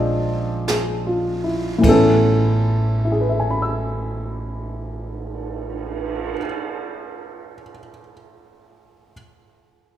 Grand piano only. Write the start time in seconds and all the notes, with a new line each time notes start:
Already playing: F3 G#3 C4 D4 G#4 D5
0.68 G#4
1.07 F4
1.44 E4
1.79 A2 E3
1.85 A3 B3 A4
1.91 C#4
3.05 E4
3.12 G#4
3.21 B4
3.29 E5
3.40 G#5
3.50 B5
3.62 E6